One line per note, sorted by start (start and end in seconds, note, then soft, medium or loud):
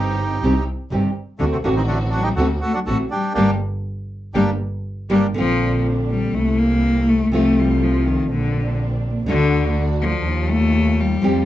0.00 0.39 G1 medium
0.00 0.62 G3 medium
0.00 0.38 C4 medium
0.00 0.39 D#4 medium
0.00 0.64 D#4 medium
0.00 0.39 G4 medium
0.00 0.64 G4 medium
0.41 0.63 C2 medium
0.41 0.52 C3 medium
0.41 0.52 D#3 medium
0.41 0.52 G3 medium
0.41 0.62 C4 medium
0.41 0.52 C4 medium
0.41 0.63 D#4 medium
0.41 0.63 G4 medium
0.41 0.52 G4 medium
0.91 1.12 G1 medium
0.91 1.08 C3 medium
0.91 1.08 D#3 medium
0.91 1.08 G3 medium
0.91 1.11 C4 soft
0.91 1.09 C4 medium
0.91 1.11 D#4 soft
0.91 1.11 G4 medium
0.91 1.09 G4 medium
1.39 1.61 D2 medium
1.39 1.56 D3 medium
1.39 1.45 D3 medium
1.39 1.45 A3 medium
1.39 1.56 A3 medium
1.39 1.60 C4 soft
1.39 1.57 C4 medium
1.39 1.45 D4 medium
1.39 1.60 D4 soft
1.39 1.61 F#4 soft
1.39 1.57 F#4 medium
1.52 1.59 C3 medium
1.52 1.58 A3 medium
1.52 1.57 C4 medium
1.64 2.33 A1 medium
1.64 1.73 D3 medium
1.64 1.70 D3 medium
1.64 1.73 A3 medium
1.64 1.69 A#3 medium
1.64 2.34 C4 medium
1.64 1.73 C4 medium
1.64 1.69 D4 medium
1.64 2.34 D4 medium
1.64 2.34 F#4 medium
1.64 1.74 F#4 medium
1.76 1.82 D#3 medium
1.76 1.82 C4 medium
1.76 1.82 D#4 medium
1.87 2.00 D3 medium
1.87 1.98 A3 medium
1.87 1.99 D4 medium
2.10 2.23 D4 medium
2.10 2.23 F#4 medium
2.15 2.25 F#3 medium
2.23 2.31 G3 medium
2.23 2.29 D#4 medium
2.23 2.29 G4 medium
2.35 2.57 D2 medium
2.35 2.47 D3 medium
2.35 2.47 A3 medium
2.35 2.57 C4 medium
2.35 2.57 D4 medium
2.35 2.47 F#4 medium
2.35 2.58 F#4 medium
2.35 2.48 A4 medium
2.40 2.51 A3 medium
2.40 2.47 C4 medium
2.40 2.47 F#4 medium
2.61 2.74 A3 medium
2.61 2.73 F#4 medium
2.61 2.75 A4 medium
2.74 2.80 F#3 medium
2.74 2.79 D4 medium
2.74 2.80 F#4 medium
2.86 3.07 A1 medium
2.86 3.03 D3 medium
2.86 3.04 A3 medium
2.86 2.99 A3 medium
2.86 3.07 C4 soft
2.86 3.04 C4 medium
2.86 3.07 D4 soft
2.86 3.07 F#4 soft
2.86 2.97 F#4 medium
2.86 3.04 F#4 medium
2.86 2.98 A4 medium
3.11 3.35 G3 medium
3.11 3.33 D4 medium
3.11 3.33 G4 medium
3.33 3.54 G1 medium
3.33 3.51 G3 medium
3.33 3.50 A#3 medium
3.33 3.52 A#3 medium
3.33 3.51 D4 medium
3.33 3.52 D4 medium
3.33 3.51 G4 medium
3.33 3.52 G4 medium
3.38 3.53 G3 medium
3.38 3.53 A#3 medium
4.34 4.53 G1 medium
4.34 4.51 G3 medium
4.34 4.51 A#3 medium
4.34 4.50 D4 medium
4.34 4.51 D4 medium
4.34 4.50 G4 medium
4.34 4.51 G4 medium
5.10 5.29 G1 medium
5.10 5.26 G3 medium
5.10 5.26 A#3 medium
5.10 5.27 A#3 medium
5.10 5.26 D4 medium
5.10 5.27 D4 medium
5.10 5.26 G4 medium
5.10 5.27 G4 medium
5.34 6.29 A#1 medium
5.34 6.32 D3 medium
5.34 5.81 F3 loud
5.34 6.29 A#3 medium
5.34 6.33 A#3 medium
5.34 6.29 C4 medium
5.34 6.84 C4 medium
5.34 6.29 D4 medium
5.34 6.34 F4 medium
6.10 6.36 G3 medium
6.33 7.28 C2 medium
6.33 6.60 A3 medium
6.33 7.27 A#3 medium
6.33 7.27 C4 medium
6.33 7.27 E4 medium
6.58 7.10 A#3 medium
7.09 7.33 A3 medium
7.32 8.25 C2 medium
7.32 8.29 C3 medium
7.32 8.29 F3 medium
7.32 8.25 A3 medium
7.32 7.61 A3 medium
7.32 8.29 A3 medium
7.32 8.25 C4 medium
7.32 8.30 C4 medium
7.32 8.25 F4 medium
7.32 8.30 F4 medium
7.59 7.85 G3 medium
7.83 8.09 F3 medium
8.07 8.31 D#3 medium
8.30 9.22 A#1 medium
8.30 8.76 D3 medium
8.30 9.23 A#3 medium
8.30 9.23 C4 medium
8.30 9.23 D4 medium
9.26 10.21 D2 medium
9.26 10.24 D3 medium
9.26 9.73 D3 loud
9.26 10.20 A3 medium
9.26 10.25 A3 medium
9.26 10.20 D4 medium
9.26 10.25 D4 medium
9.26 10.20 F#4 medium
9.26 10.25 F#4 medium
10.02 10.51 F3 loud
10.23 11.17 D#2 medium
10.23 11.18 G3 medium
10.23 11.18 D#4 medium
10.23 11.18 F4 medium
10.50 11.02 A3 loud
11.00 11.45 G3 medium
11.21 11.45 F2 medium
11.21 11.45 F3 medium
11.21 11.45 G3 medium
11.21 11.45 A3 medium
11.21 11.45 C4 medium
11.21 11.45 F4 medium
11.21 11.45 G4 medium